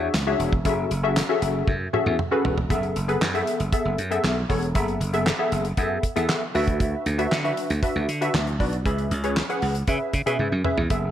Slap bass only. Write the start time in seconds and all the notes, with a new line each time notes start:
0.14 C#2
0.39 E1
0.65 F#1
0.91 F#1
1.42 F#1
1.68 F#2
2.06 E2
2.45 E1
2.70 F#1
2.96 F#1
3.21 F#2
3.60 F#1
3.85 F#1
3.98 F#2
4.24 B1
4.50 E1
4.75 F#1
5.00 F#1
5.52 F#1
5.78 F#2
6.16 E2
6.55 D2
7.06 D2
7.32 D3
7.70 D2
7.96 D2
8.08 D3
8.34 D2
8.60 B1
8.86 C#2
9.11 C#2
9.62 C#2
9.88 C#3
10.13 C#3
10.26 B2
10.39 G#2
10.52 F#2
10.77 E2
10.90 F#1